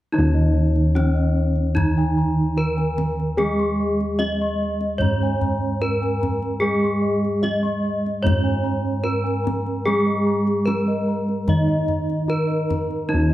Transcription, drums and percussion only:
0.76 kendang slap
0.96 kendang high
1.16 kendang slap
1.56 kendang slap
1.77 kendang high, kendang low
2.78 kendang slap
2.98 kendang high, kendang low
3.20 kendang slap
3.38 kendang high
3.59 kendang slap
4.00 kendang slap
4.19 kendang high
4.41 kendang slap
4.81 kendang slap
5.01 kendang low
5.41 kendang low
6.03 kendang slap
6.23 kendang high, kendang low
6.43 kendang slap
6.84 kendang slap
7.25 kendang slap
7.44 kendang high
7.65 kendang slap
8.06 kendang slap
8.27 kendang high, kendang low
9.27 kendang slap
9.47 kendang high, kendang low
9.66 kendang slap
9.87 kendang high
10.08 kendang slap
10.47 kendang slap
10.67 kendang high
10.87 kendang slap
11.28 kendang slap
11.48 kendang low
11.68 kendang slap
11.88 kendang low
12.10 kendang slap
12.50 kendang slap
12.70 kendang high, kendang low
12.91 kendang slap
13.30 kendang slap

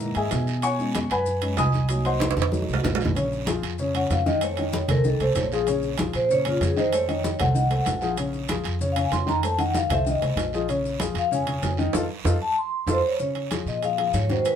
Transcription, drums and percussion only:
0.00 high conga, long guiro, maracas
0.15 high conga, high timbale, maracas
0.31 high conga, high timbale, low timbale, short guiro, maracas
0.47 high conga, short guiro, maracas
0.62 high conga, high timbale, long guiro, maracas
0.79 high conga, maracas
0.94 high conga, high timbale, low timbale, short guiro, maracas
1.10 high timbale, short guiro, maracas
1.26 high conga, long guiro, maracas
1.42 high conga, high timbale, maracas
1.57 high conga, high timbale, low timbale, short guiro, maracas
1.72 high conga, short guiro, maracas
1.88 high conga, high timbale, long guiro, maracas
2.05 high conga, high timbale, maracas
2.20 high conga, high timbale, short guiro, maracas
2.31 high timbale
2.37 high conga, low conga, short guiro, maracas
2.42 high timbale
2.52 high conga, long guiro, maracas
2.62 high conga
2.69 maracas
2.74 low timbale
2.84 low conga, low timbale, short guiro, maracas
2.95 low timbale
3.00 short guiro, maracas
3.05 low conga, low timbale
3.15 high conga, high timbale, long guiro, maracas
3.32 high conga, maracas
3.46 high conga, high timbale, low timbale, short guiro, maracas
3.63 high timbale, short guiro, maracas
3.78 high conga, long guiro, maracas
3.94 high conga, high timbale, maracas
4.10 high conga, high timbale, low timbale, short guiro, maracas
4.26 high conga, short guiro, maracas
4.41 high conga, high timbale, long guiro, maracas
4.57 high conga, high timbale, maracas
4.73 high conga, low timbale, short guiro, maracas
4.88 high conga, low conga, high timbale, short guiro, maracas
5.04 high conga, long guiro, maracas
5.20 high conga, high timbale, maracas
5.35 high conga, high timbale, low timbale, short guiro, maracas
5.52 high conga, short guiro, maracas
5.67 high conga, high timbale, long guiro, maracas
5.82 high conga, maracas
5.98 high conga, high timbale, low timbale, short guiro, maracas
6.13 high timbale, short guiro, maracas
6.29 high conga, long guiro, maracas
6.45 high conga, high timbale, maracas
6.61 high conga, high timbale, low timbale, short guiro, maracas
6.77 short guiro, maracas
6.93 high conga, high timbale, maracas
7.09 high conga, high timbale, maracas
7.23 high conga, low timbale, short guiro, maracas
7.39 high conga, low conga, high timbale, short guiro, maracas
7.55 high conga, long guiro, maracas
7.71 high conga, high timbale, maracas
7.85 high conga, high timbale, low timbale, short guiro, maracas
8.01 high conga, short guiro, maracas
8.16 high conga, high timbale, long guiro, maracas
8.33 high conga, maracas
8.48 high conga, high timbale, low timbale, short guiro, maracas
8.64 high timbale, short guiro, maracas
8.79 high conga, long guiro, maracas
8.96 high conga, high timbale, maracas
9.12 high conga, high timbale, low timbale, short guiro, maracas
9.27 high conga, short guiro, maracas
9.43 high conga, high timbale, long guiro, maracas
9.59 high conga, high timbale, maracas
9.74 high conga, low timbale, short guiro, maracas
9.90 high conga, low conga, high timbale, short guiro, maracas
10.05 high conga, long guiro, maracas
10.22 high conga, high timbale, maracas
10.37 high conga, high timbale, low timbale, short guiro, maracas
10.53 high conga, short guiro, maracas
10.68 high conga, high timbale, long guiro, maracas
10.84 high conga, maracas
11.00 high conga, high timbale, low timbale, short guiro, maracas
11.15 high timbale, short guiro, maracas
11.31 high conga, long guiro, maracas
11.47 high conga, high timbale, maracas
11.63 high conga, high timbale, low timbale, short guiro, maracas
11.77 short guiro, maracas
11.93 high conga, high timbale, long guiro, maracas
12.25 high conga, high timbale, long guiro, maracas
12.87 high conga, high timbale, long guiro, maracas
13.19 high conga, long guiro, maracas
13.35 high conga, high timbale
13.51 high conga, high timbale, short guiro, maracas
13.67 high conga, short guiro, maracas
13.82 high conga, high timbale, long guiro, maracas
13.98 high conga, high timbale
14.14 high conga, high timbale, short guiro, maracas
14.29 high conga, short guiro, maracas
14.45 high conga, high timbale, long guiro, maracas

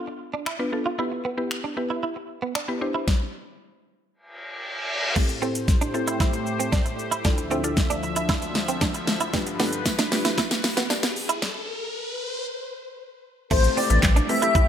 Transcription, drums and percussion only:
0.46 finger snap
1.51 finger snap
2.55 finger snap
3.08 kick, snare
5.16 kick, snare, crash, shaker
5.29 closed hi-hat, shaker
5.42 shaker
5.55 closed hi-hat, shaker
5.68 kick, snare, shaker
5.81 closed hi-hat, shaker
5.94 shaker
6.08 closed hi-hat, shaker
6.20 kick, snare, shaker
6.33 closed hi-hat, shaker
6.47 shaker
6.60 closed hi-hat, shaker
6.73 kick, snare, shaker
6.86 closed hi-hat, shaker
6.99 shaker
7.12 closed hi-hat, shaker
7.25 kick, snare, shaker
7.38 closed hi-hat, shaker
7.51 shaker
7.64 closed hi-hat, shaker
7.77 kick, snare, shaker
7.90 closed hi-hat, shaker
8.03 shaker
8.16 closed hi-hat, shaker
8.29 kick, snare, shaker
8.42 closed hi-hat, shaker
8.55 snare, shaker
8.68 closed hi-hat, shaker
8.81 kick, snare, shaker
8.94 closed hi-hat, shaker
9.07 snare, shaker
9.20 closed hi-hat, shaker
9.34 kick, snare, tambourine, shaker
9.47 closed hi-hat, shaker
9.60 snare, open hi-hat, tambourine, shaker
9.73 closed hi-hat, shaker
9.86 kick, snare, tambourine, shaker
9.99 snare, closed hi-hat, shaker
10.12 snare, open hi-hat, tambourine, shaker
10.25 snare, closed hi-hat, shaker
10.38 kick, snare, tambourine, shaker
10.51 snare, closed hi-hat, shaker
10.64 snare, open hi-hat, shaker
10.77 snare, closed hi-hat, shaker
10.90 snare, tambourine, shaker
11.03 snare, closed hi-hat, shaker
11.16 open hi-hat, tambourine, shaker
11.29 closed hi-hat, shaker
11.42 kick, snare
13.51 kick, crash, shaker
13.64 closed hi-hat, shaker
13.77 open hi-hat, shaker
13.90 closed hi-hat, shaker
14.03 kick, snare, clap, shaker
14.16 closed hi-hat, shaker
14.29 open hi-hat, shaker
14.42 closed hi-hat, shaker
14.55 kick, shaker

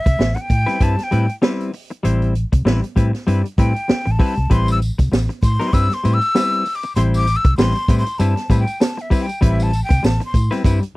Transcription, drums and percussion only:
0.06 kick, closed hi-hat
0.20 snare
0.37 closed hi-hat
0.50 kick, closed hi-hat
0.68 snare, closed hi-hat
0.80 kick, closed hi-hat
0.98 snare, closed hi-hat
1.12 closed hi-hat
1.29 closed hi-hat
1.43 snare
1.60 closed hi-hat
1.73 open hi-hat
1.91 closed hi-hat
2.04 closed hi-hat
2.22 closed hi-hat
2.35 closed hi-hat
2.52 kick, closed hi-hat
2.67 snare
2.84 closed hi-hat
2.97 kick, closed hi-hat
3.14 snare, closed hi-hat
3.28 closed hi-hat
3.45 closed hi-hat
3.58 kick, closed hi-hat
3.76 closed hi-hat
3.89 snare
4.07 closed hi-hat
4.20 kick, open hi-hat
4.37 closed hi-hat
4.51 kick, closed hi-hat
4.68 closed hi-hat, tambourine
4.82 closed hi-hat, tambourine
4.99 kick, closed hi-hat, tambourine
5.13 snare, tambourine
5.30 closed hi-hat
5.43 kick, closed hi-hat, tambourine
5.61 snare, closed hi-hat
5.73 kick, closed hi-hat, tambourine
5.91 snare, closed hi-hat
6.05 closed hi-hat, tambourine
6.21 closed hi-hat, tambourine
6.35 snare, tambourine
6.53 closed hi-hat
6.65 open hi-hat, tambourine
6.83 closed hi-hat, tambourine
6.96 closed hi-hat
7.14 closed hi-hat, tambourine
7.27 closed hi-hat, tambourine
7.45 kick, closed hi-hat
7.58 snare, tambourine
7.75 closed hi-hat
7.88 kick, closed hi-hat, tambourine
8.06 closed hi-hat, tambourine
8.19 closed hi-hat, tambourine
8.37 snare, closed hi-hat
8.50 kick, closed hi-hat, tambourine
8.67 closed hi-hat, tambourine
8.81 snare, tambourine
8.98 closed hi-hat
9.11 kick, open hi-hat, tambourine
9.29 closed hi-hat, tambourine
9.42 kick, closed hi-hat
9.60 closed hi-hat, tambourine
9.73 closed hi-hat, tambourine
9.90 kick, closed hi-hat, tambourine
10.04 snare, tambourine
10.21 closed hi-hat
10.34 kick, closed hi-hat, tambourine
10.52 snare, closed hi-hat, tambourine
10.64 kick, closed hi-hat, tambourine
10.83 closed hi-hat

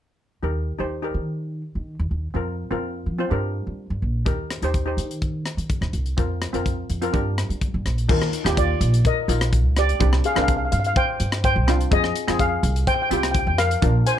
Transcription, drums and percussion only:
4.26 kick, closed hi-hat
4.50 cross-stick, closed hi-hat
4.62 closed hi-hat
4.74 kick, closed hi-hat
4.98 closed hi-hat
5.11 closed hi-hat
5.22 kick, closed hi-hat
5.46 cross-stick, closed hi-hat
5.58 closed hi-hat
5.70 kick, closed hi-hat
5.82 cross-stick
5.93 closed hi-hat
6.06 closed hi-hat
6.18 kick, closed hi-hat
6.42 cross-stick, closed hi-hat
6.54 closed hi-hat
6.66 kick, closed hi-hat
6.90 closed hi-hat
7.02 closed hi-hat
7.14 kick, closed hi-hat
7.38 cross-stick, closed hi-hat
7.50 closed hi-hat
7.61 kick, closed hi-hat
7.86 cross-stick, closed hi-hat
7.98 closed hi-hat
8.09 kick, crash
8.22 cross-stick
8.33 closed hi-hat
8.46 cross-stick, closed hi-hat
8.57 kick, closed hi-hat
8.81 closed hi-hat
8.94 closed hi-hat
9.05 kick, closed hi-hat
9.29 closed hi-hat
9.41 cross-stick, closed hi-hat
9.53 kick, closed hi-hat
9.77 cross-stick, closed hi-hat
9.89 closed hi-hat
10.01 kick, closed hi-hat
10.13 cross-stick
10.24 closed hi-hat
10.36 cross-stick, closed hi-hat
10.48 kick, closed hi-hat
10.72 closed hi-hat
10.84 closed hi-hat
10.96 kick, closed hi-hat
11.20 closed hi-hat
11.32 cross-stick, closed hi-hat
11.44 kick, closed hi-hat
11.68 cross-stick, closed hi-hat
11.81 closed hi-hat
11.91 kick, closed hi-hat
12.04 cross-stick
12.16 closed hi-hat
12.28 cross-stick, closed hi-hat
12.39 kick, closed hi-hat
12.63 closed hi-hat
12.76 closed hi-hat
12.87 kick, closed hi-hat
13.11 closed hi-hat
13.23 cross-stick, closed hi-hat
13.34 kick, closed hi-hat
13.58 cross-stick, closed hi-hat
13.71 closed hi-hat
13.82 kick, closed hi-hat
14.07 closed hi-hat

